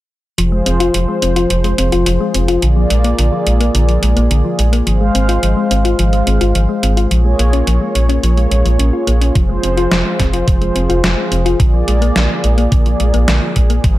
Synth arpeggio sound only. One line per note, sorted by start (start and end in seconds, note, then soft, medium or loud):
0.38 0.47 F3 medium
0.52 0.61 G#3 medium
0.66 0.71 C4 medium
0.80 0.85 F4 loud
0.94 1.03 F3 medium
1.08 1.17 G#3 medium
1.22 1.28 C4 medium
1.36 1.42 F4 loud
1.50 1.59 F3 medium
1.64 1.73 G#3 medium
1.78 1.84 C4 medium
1.92 1.98 F4 loud
2.06 2.15 F3 medium
2.21 2.29 G#3 medium
2.34 2.40 C4 medium
2.48 2.54 F4 loud
2.63 2.71 D3 medium
2.77 2.85 F3 medium
2.90 2.96 G#3 medium
3.05 3.10 A#3 loud
3.19 3.27 D3 medium
3.33 3.41 F3 medium
3.46 3.52 G#3 medium
3.61 3.66 A#3 loud
3.75 3.83 D3 medium
3.89 3.97 F3 medium
4.03 4.08 G#3 medium
4.17 4.22 A#3 loud
4.31 4.39 D3 medium
4.45 4.53 F3 medium
4.59 4.64 G#3 medium
4.73 4.78 A#3 loud
4.87 4.96 F3 medium
5.01 5.10 G#3 medium
5.15 5.20 C4 medium
5.29 5.34 F4 loud
5.43 5.52 F3 medium
5.57 5.66 G#3 medium
5.71 5.76 C4 medium
5.85 5.90 F4 loud
5.99 6.08 F3 medium
6.13 6.22 G#3 medium
6.27 6.32 C4 medium
6.41 6.46 F4 loud
6.55 6.64 F3 medium
6.69 6.78 G#3 medium
6.83 6.88 C4 medium
6.97 7.02 F4 loud
7.11 7.20 F3 medium
7.25 7.34 G#3 medium
7.39 7.44 A#3 medium
7.53 7.58 C#4 loud
7.67 7.76 F3 medium
7.81 7.90 G#3 medium
7.95 8.00 A#3 medium
8.09 8.14 C#4 loud
8.23 8.32 F3 medium
8.37 8.46 G#3 medium
8.51 8.60 G#3 medium
8.65 8.71 F3 medium
8.79 8.88 C#4 medium
8.93 9.06 F4 medium
9.07 9.13 A#3 loud
9.21 9.30 C#4 medium
9.35 9.44 F3 medium
9.49 9.58 G#3 medium
9.63 9.69 C4 medium
9.77 9.83 F4 loud
9.91 10.00 F3 medium
10.05 10.14 G#3 medium
10.19 10.25 C4 medium
10.33 10.39 F4 loud
10.47 10.56 F3 medium
10.61 10.70 G#3 medium
10.75 10.81 C4 medium
10.90 10.95 F4 loud
11.04 11.12 F3 medium
11.18 11.26 G#3 medium
11.32 11.37 C4 medium
11.46 11.51 F4 loud
11.60 11.68 D3 medium
11.74 11.82 F3 medium
11.88 11.93 G#3 medium
12.02 12.07 A#3 loud
12.16 12.25 D3 medium
12.30 12.39 F3 medium
12.44 12.49 G#3 medium
12.58 12.63 A#3 loud
12.72 12.81 D3 medium
12.86 12.95 F3 medium
13.00 13.05 G#3 medium
13.14 13.19 A#3 loud
13.28 13.37 D3 medium
13.42 13.51 F3 medium
13.56 13.61 G#3 medium
13.70 13.75 A#3 loud
13.84 13.93 F3 medium